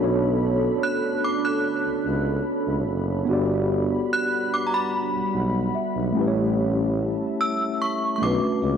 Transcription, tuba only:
0.00 B1
1.85 C#2
2.05 C#2
2.67 C#2
2.88 F#1
3.29 G1
5.14 B1
5.34 B1
5.96 B1
6.17 A1
8.22 B1
8.43 C#2
8.63 C#2

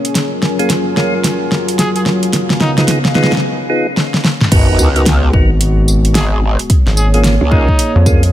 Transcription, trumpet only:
1.79 G#4
1.96 G#4
2.61 D#4
2.78 D#4
6.15 G#4
6.32 G#4
6.97 G#4
7.14 G#4
7.51 D#4

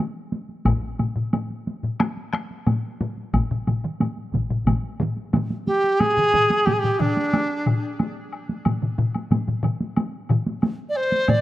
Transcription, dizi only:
5.67 G4
6.00 G#4
6.66 G4
6.73 G#4
6.79 G4
7.00 D4
10.89 D5
10.97 C5
11.29 D5

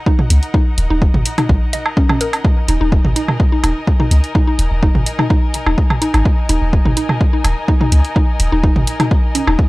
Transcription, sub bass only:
0.30 C#2
0.78 D#1
0.90 D#1
1.14 G#1
1.49 A#1
2.68 D#1
2.81 D#1
3.05 G#1
3.64 D#1
4.11 C#2
4.59 D#1
4.71 D#1
4.95 G#1
5.66 D#1
6.14 G#1
6.49 D#1
6.62 D#1
6.85 G#1
7.44 D#1
7.92 C#2
8.40 D#1
8.52 D#1
8.76 G#1
9.47 D#1

